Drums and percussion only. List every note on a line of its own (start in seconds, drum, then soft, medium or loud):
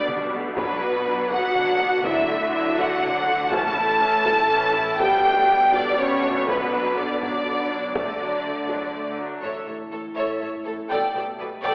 0.09 taiko mid medium
0.57 taiko medium
1.31 taiko medium
1.56 taiko mid soft
2.04 taiko medium
2.79 taiko medium
3.03 taiko mid medium
3.52 taiko loud
4.26 taiko medium
4.99 taiko loud
5.74 taiko medium
6.48 taiko medium
7.23 taiko medium
7.96 taiko medium
8.69 taiko medium
9.42 taiko soft
10.54 taiko soft